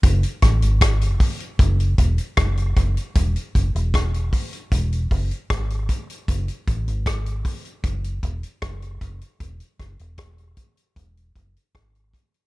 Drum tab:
HH |xxxxxxoxxxxxxxxx|xxxxxxoxxxoxxxxx|xxxxxxoxxxxxxxxx|xxxxxxxxxxxxxxxx|
SD |--r-r-------r---|----r-------r---|----r-------r---|--r-r-------r---|
BD |o-o-o-o-o-o-o-o-|o-o-o-o-o-o-o-o-|o-o-o-o-o-o-o-o-|o-o-o-o-o-o-o-o-|